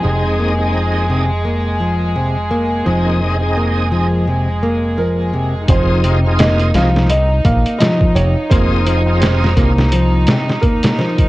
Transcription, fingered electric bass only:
X:1
M:4/4
L:1/8
Q:"Swing 16ths" 1/4=85
K:Fm
V:1 name="Fingered electric bass" clef=bass
F,,,8 | F,,,8 | F,,,3 C,,2 B,,, z F,,, | F,,,3 C,,2 z3 |]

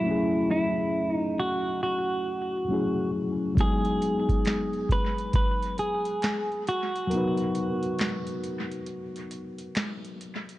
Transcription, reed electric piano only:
X:1
M:4/4
L:1/8
Q:"Swing 16ths" 1/4=68
K:G#phr
V:1 name="Reed electric piano"
[F,A,CEG]6 [F,A,CEG]2 | [F,G,B,DG]8 | [F,B,D^AB]8 |]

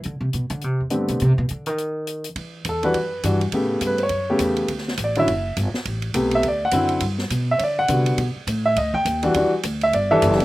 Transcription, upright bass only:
X:1
M:4/4
L:1/16
Q:"Swing" 1/4=206
K:Em
V:1 name="Upright bass" clef=bass
D,2 C,2 B,,2 D,2 C,2 E,,2 G,,2 B,,2 | C,2 B,,2 D,2 ^D,8- D, z | E,4 E,,4 F,,4 G,,4 | A,,4 G,,4 F,,4 E,,4 |
D,,4 A,,,4 F,,,4 G,,,2 z2 | A,,,4 B,,,4 D,,4 F,,4 | G,,4 B,,4 D,4 C,4 | B,,2 z2 A,,4 D,,4 ^D,,4 |
E,,2 z2 D,,4 G,,,4 F,,,4 |]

